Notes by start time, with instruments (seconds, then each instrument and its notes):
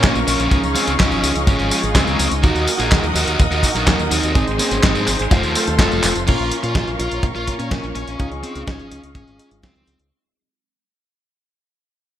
Already playing: lead electric guitar A#3 C#4, analog polysynth A#3 C#4 F4 A#4, string section A#4 C#5 F5 C#6
0.04 fingered electric bass A#1, kick, snare, clap, closed hi-hat, tambourine
0.15 fingered electric bass A#1, closed hi-hat, tambourine
0.27 fingered electric bass A#1, lead electric guitar F3 C#4, open hi-hat, tambourine
0.39 fingered electric bass A#1, closed hi-hat, tambourine
0.51 fingered electric bass C#2, analog polysynth C#4 D#4 F4 G#4, string section G#4 D#5, kick, closed hi-hat, tambourine
0.63 fingered electric bass C#2, closed hi-hat, tambourine
0.75 lead electric guitar G#3 C4, open hi-hat, tambourine
0.87 fingered electric bass C#2, closed hi-hat, tambourine
0.99 fingered electric bass C#2, lead electric guitar F3 C#4, kick, snare, clap, closed hi-hat, tambourine
1.11 fingered electric bass G#1, closed hi-hat, tambourine
1.23 fingered electric bass C#2, open hi-hat, tambourine
1.35 fingered electric bass C#2, closed hi-hat, tambourine
1.47 fingered electric bass G#1, lead electric guitar F3 C#4, kick, closed hi-hat, tambourine
1.59 fingered electric bass G#1, closed hi-hat, tambourine
1.71 analog polysynth G#3 D#4 F4 G#4, open hi-hat, tambourine
1.83 fingered electric bass G#1, closed hi-hat, tambourine
1.95 fingered electric bass C#2, lead electric guitar G#3 C4, kick, snare, clap, closed hi-hat, tambourine
2.07 fingered electric bass C#2, closed hi-hat, tambourine
2.19 fingered electric bass C#2, open hi-hat, tambourine
2.31 fingered electric bass C#2, closed hi-hat, tambourine
2.43 fingered electric bass D#2, analog polysynth A#3 D#4 F#4 A#4, lead electric guitar D#4 F#4, string section A#4 F#5 D#6, kick, closed hi-hat, tambourine
2.55 fingered electric bass D#2, closed hi-hat, tambourine
2.68 open hi-hat, tambourine
2.79 fingered electric bass A#1, lead electric guitar F4 G#4, closed hi-hat, tambourine
2.92 fingered electric bass D#2, kick, snare, clap, closed hi-hat, tambourine
3.03 fingered electric bass D#2, closed hi-hat, tambourine
3.15 fingered electric bass D#2, lead electric guitar D#4 F#4, open hi-hat, tambourine
3.27 fingered electric bass D#2, closed hi-hat, tambourine
3.39 fingered electric bass D#2, kick, closed hi-hat, tambourine
3.51 fingered electric bass D#2, lead electric guitar D#4 F#4, closed hi-hat, tambourine
3.63 analog polysynth A#3 D#4 F#4 A#4, kick, open hi-hat, tambourine
3.75 fingered electric bass A#1, lead electric guitar F#3 D#4, closed hi-hat, tambourine
3.87 fingered electric bass D#2, kick, snare, clap, closed hi-hat, tambourine
3.99 fingered electric bass D#2, closed hi-hat, tambourine
4.11 fingered electric bass D#2, lead electric guitar C4 D#4, open hi-hat, tambourine
4.23 fingered electric bass D#2, closed hi-hat, tambourine
4.35 fingered electric bass G#1, analog polysynth G#3 C4 D#4 G#4, string section G#4 C5 C6, kick, closed hi-hat, tambourine
4.47 fingered electric bass G#1, closed hi-hat, tambourine
4.59 lead electric guitar A#3 C#4, open hi-hat, tambourine
4.71 fingered electric bass G#1, closed hi-hat, tambourine
4.83 fingered electric bass G#1, lead electric guitar C4 D#4, kick, snare, clap, closed hi-hat, tambourine
4.95 fingered electric bass G#2, closed hi-hat, tambourine
5.07 fingered electric bass G#1, clap, open hi-hat, tambourine
5.19 fingered electric bass G#1, closed hi-hat, tambourine
5.31 fingered electric bass F1, lead electric guitar A3 F4, string section A4 F5 C6, kick, snare, closed hi-hat, tambourine
5.43 fingered electric bass D#2, closed hi-hat, tambourine
5.55 analog polysynth A3 C4 F4 A4, open hi-hat, tambourine
5.67 fingered electric bass D#2, closed hi-hat, tambourine
5.79 fingered electric bass F1, lead electric guitar F4 A4, kick, snare, clap, closed hi-hat, tambourine
5.91 fingered electric bass F1, closed hi-hat, tambourine
6.03 fingered electric bass F1, clap, open hi-hat, tambourine
6.15 fingered electric bass F1, closed hi-hat, tambourine
6.27 fingered electric bass A#1, analog polysynth A#3 C#4 F4 A#4, lead electric guitar F4, string section A#4 C#5 F5 C#6, kick, closed hi-hat, crash
6.39 fingered electric bass A#1, closed hi-hat
6.51 closed hi-hat
6.63 fingered electric bass A#2, lead electric guitar F4, closed hi-hat
6.75 fingered electric bass A#1, kick, snare, closed hi-hat
6.87 fingered electric bass A#1, closed hi-hat
7.00 fingered electric bass A#1, lead electric guitar F4, closed hi-hat
7.12 fingered electric bass A#1, closed hi-hat
7.23 fingered electric bass A#1, kick, closed hi-hat
7.36 fingered electric bass A#1, lead electric guitar F4, closed hi-hat
7.47 analog polysynth A#3 C#4 F4 A#4, kick, closed hi-hat
7.59 fingered electric bass A#2, lead electric guitar C#4, closed hi-hat
7.71 fingered electric bass A#1, kick, snare, closed hi-hat
7.83 fingered electric bass A#1, closed hi-hat
7.95 fingered electric bass A#1, lead electric guitar C#4, closed hi-hat
8.07 fingered electric bass A#1, closed hi-hat
8.19 fingered electric bass C#2, analog polysynth C#4 D#4 F4 G#4, string section G#4 D#5 F5, kick, closed hi-hat
8.31 fingered electric bass C#2, closed hi-hat
8.43 lead electric guitar C4, closed hi-hat
8.55 fingered electric bass C#2, closed hi-hat
8.68 fingered electric bass C#2, lead electric guitar C#4, kick, snare, closed hi-hat
8.79 fingered electric bass G#1, closed hi-hat
8.91 fingered electric bass C#2, closed hi-hat
9.03 fingered electric bass C#2, closed hi-hat
9.15 fingered electric bass G#1, lead electric guitar C#4, kick, closed hi-hat
9.27 fingered electric bass G#1, closed hi-hat
9.39 analog polysynth G#3 D#4 F4 G#4, closed hi-hat
9.51 fingered electric bass G#1, closed hi-hat
9.63 fingered electric bass C#2, lead electric guitar C4, kick, snare, closed hi-hat
9.76 fingered electric bass C#2, closed hi-hat
9.87 fingered electric bass C#2, closed hi-hat
9.99 fingered electric bass C#2, closed hi-hat